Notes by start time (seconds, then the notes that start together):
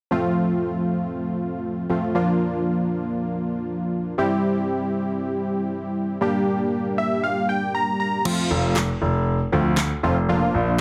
0.11 F3 A3 C4 F4
1.90 F3 A3 C4 F4
2.15 F3 A#3 D4 F4
4.18 G3 C4 E4 G4
6.21 G3 A#3 D4 G4
6.98 E5
7.24 F5
7.49 G5
7.75 A#5
8.00 A#5
8.25 F3 A3 C4 F4, crash
8.51 F1
8.76 snare, clap
9.02 F1
9.52 D2 F3 A3 C4 F4
9.77 snare, clap
10.03 F1 F3 A3 C4 F4
10.29 F3 A#3 D4 F4
10.54 A#1